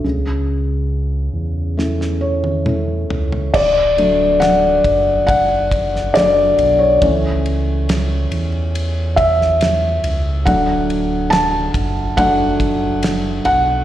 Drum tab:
CC |----------------|x---------------|----------------|----------------|
RD |----------------|--x-x-x-x-x-x-x-|x-x-x-x-x-x-x-x-|x-x-x-x-x-x-x-x-|
SD |--------oo------|----o------oo---|----o------oo---|----o-------o---|
T1 |-----------o----|----------------|----------------|----------------|
T2 |------------o---|----------------|----------------|----------------|
FT |--------------oo|----------------|----------------|----------------|
BD |----------------|o-----o-o-o-----|o---------o-----|o-----o-o-o-----|